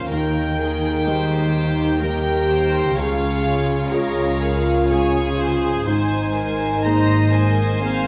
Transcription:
0.00 0.13 A#3 soft
0.00 0.13 F4 soft
0.00 0.13 A#4 soft
0.00 0.11 C5 medium
0.08 2.93 D#2 medium
0.08 1.04 D#2 medium
0.08 2.94 D#3 medium
0.08 1.97 D#4 medium
0.08 0.56 A#4 medium
0.08 0.57 A#4 medium
0.08 2.01 G5 medium
0.57 1.06 G#4 medium
0.57 1.04 A#4 medium
1.04 1.98 G3 soft
1.04 1.54 G#3 medium
1.04 1.98 D#4 soft
1.04 1.99 G4 medium
1.04 1.98 A#4 soft
1.04 1.99 C5 medium
1.54 2.97 G4 medium
2.01 2.94 G3 soft
2.01 2.94 D#4 soft
2.01 2.98 G4 medium
2.01 2.96 A#4 medium
2.01 2.94 A#4 soft
2.01 2.96 G5 medium
2.47 2.97 C5 medium
2.96 3.90 C#2 medium
2.96 5.87 C#2 medium
2.96 5.87 C#3 medium
2.96 3.92 F4 medium
2.96 3.93 G#4 medium
2.96 3.89 C#5 medium
2.96 3.93 F5 medium
2.96 3.91 F5 medium
3.90 5.86 F4 medium
3.90 4.42 G#4 medium
3.90 4.86 G#4 soft
3.90 4.40 A#4 medium
3.90 4.86 C#5 medium
3.90 4.88 F5 medium
3.94 4.86 G#3 soft
3.94 4.87 C#5 soft
4.39 4.86 G#4 medium
4.39 4.91 A#4 medium
4.87 5.83 G#3 soft
4.87 5.83 G#4 medium
4.87 5.36 C#5 medium
4.87 5.85 G#5 medium
4.91 5.84 C#4 soft
4.91 5.83 G#4 soft
4.91 5.85 G#4 medium
5.37 5.87 C5 medium
5.85 8.07 G#1 medium
5.85 8.07 G#2 medium
5.85 6.81 G#2 medium
5.85 7.78 D#4 medium
5.85 6.36 C5 medium
5.85 6.34 C5 medium
5.85 6.82 G#5 medium
6.34 6.83 A#4 medium
6.34 8.07 C5 medium
6.84 7.79 A#3 soft
6.84 7.79 G#4 soft
6.84 7.33 C5 medium
6.84 7.79 C5 soft
6.84 7.83 D#5 medium
6.84 7.33 A#5 medium
7.30 7.81 A#4 medium
7.30 8.07 G#5 medium
7.81 8.07 A#3 soft
7.81 8.07 C4 medium
7.81 8.07 G#4 soft
7.81 8.07 C5 medium
7.81 8.07 C5 soft
7.81 8.07 F5 medium

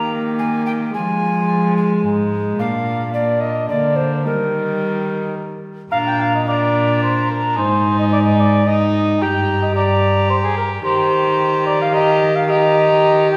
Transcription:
0.00 0.96 D#3 medium
0.00 0.92 A#3 medium
0.00 0.91 G4 medium
0.00 0.12 A#5 medium
0.39 0.65 G#5 medium
0.66 0.72 G5 medium
0.94 2.05 F3 medium
0.94 2.61 G#3 medium
0.94 2.02 F4 medium
0.94 1.75 G#5 loud
1.77 2.04 G#5 medium
2.04 2.58 G#2 medium
2.04 2.61 D#4 medium
2.59 3.70 A#2 medium
2.59 3.13 A#3 medium
2.59 3.13 D4 medium
2.59 3.10 F5 medium
3.13 3.68 A#3 medium
3.13 3.68 D4 medium
3.13 3.42 D5 medium
3.40 3.68 D#5 medium
3.69 4.27 D3 soft
3.69 4.27 A#3 medium
3.69 4.26 D4 medium
3.69 3.97 D5 medium
3.96 4.24 C5 medium
4.24 5.72 D#3 medium
4.24 5.72 G3 medium
4.24 5.64 D#4 medium
4.24 5.35 A#4 medium
5.91 7.58 A#2 medium
5.91 6.44 D4 medium
5.91 5.98 F5 loud
5.91 6.43 A#5 medium
6.07 6.20 G5 loud
6.21 6.34 F5 medium
6.35 6.48 D#5 medium
6.47 7.58 D4 medium
6.47 7.02 D5 loud
6.47 7.58 A#5 medium
7.03 7.29 C5 medium
7.31 7.57 A#4 medium
7.57 9.23 G#2 medium
7.57 8.67 D#4 medium
7.57 7.98 C5 loud
7.57 8.65 G#5 medium
7.99 8.05 D#5 medium
8.13 8.19 D5 loud
8.25 8.41 D#5 medium
8.40 8.69 D5 loud
8.66 9.23 D#4 medium
8.66 9.21 D#5 medium
8.66 9.20 G#5 medium
9.21 10.84 G2 medium
9.21 9.75 G4 medium
9.21 9.62 G5 loud
9.21 9.75 A#5 medium
9.62 9.75 D#5 medium
9.75 10.83 G4 medium
9.75 10.29 D5 loud
9.75 10.83 A#5 medium
10.30 10.36 C5 medium
10.44 10.57 G#4 medium
10.57 10.70 A#4 medium
10.84 13.37 D#3 medium
10.84 11.92 G4 medium
10.84 11.65 C5 loud
10.84 11.92 A#5 medium
11.66 11.80 D5 loud
11.82 11.94 F5 loud
11.94 12.48 G4 medium
11.94 12.37 D#5 loud
11.94 12.29 A#5 medium
12.36 12.52 F5 loud
12.48 13.37 G4 medium
12.48 13.31 D#5 loud
12.48 13.27 A#5 medium
13.32 13.37 G5 loud

